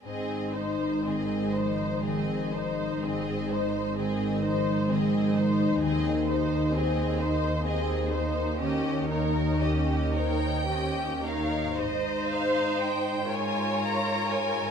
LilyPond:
<<
  \new Staff \with { instrumentName = "Violin section" } { \time 6/8 \key aes \major \tempo 4. = 41 << { r2. | r2. | r2. | r4 ees''8 g''4 f''8 |
ees''8 f''8 g''8 aes''8 bes''8 aes''8 | } \\ { ees''8 c''8 ees''8 c''8 ees''8 c''8 | ees''8 c''8 ees''8 c''8 ees''8 c''8 | ees''8 c''8 ees''8 c''8 ees''8 c''8 | ees''8 des''8 ees''8 des''8 ees''8 des''8 |
r2. | } >> }
  \new Staff \with { instrumentName = "Violin section" } { \time 6/8 \key aes \major aes'8 c''8 aes'8 c''8 aes'8 c''8 | aes'8 c''8 aes'8 c''8 aes'8 c''8 | aes'8 c''8 aes'8 c''8 aes'8 c''8 | g'8 bes'8 g'8 bes'8 g'8 bes'8 |
<ees' c''>4. <f' bes'>4. | }
  \new Staff \with { instrumentName = "Viola section" } { \time 6/8 \key aes \major c'8 ees'8 c'8 ees'8 c'8 ees'8 | c'8 ees'8 c'8 ees'8 c'8 ees'8 | c'8 ees'8 c'8 ees'8 c'8 ees'8 | des'8 ees'8 des'8 ees'8 des'8 ees'8 |
c''4. des''4. | }
  \new Staff \with { instrumentName = "Harp" } { \time 6/8 \key aes \major r2. | r2. | r2. | r2. |
<aes, c' ees' aes'>4. <aes, bes des' aes'>4. | }
  \new Staff \with { instrumentName = "Harp" } { \time 6/8 \key aes \major aes,8 ees'8 ees8 f8 ees8 ees'8 | aes,8 c'8 ees8 f8 ees8 ees'8 | ees8 aes'8 c'8 des'8 c'8 aes'8 | ees8 ees'8 bes8 c'8 bes8 ees'8~ |
ees'4. r4. | }
  \new Staff \with { instrumentName = "Cello section" } { \clef bass \time 6/8 \key aes \major aes,2. | aes,2. | ees,2.~ | ees,2. |
aes,2. | }
  \new Staff \with { instrumentName = "Double bass section" } { \clef bass \time 6/8 \key aes \major aes,,2. | aes,,2. | ees,2.~ | ees,2. |
aes,,4 r2 | }
>>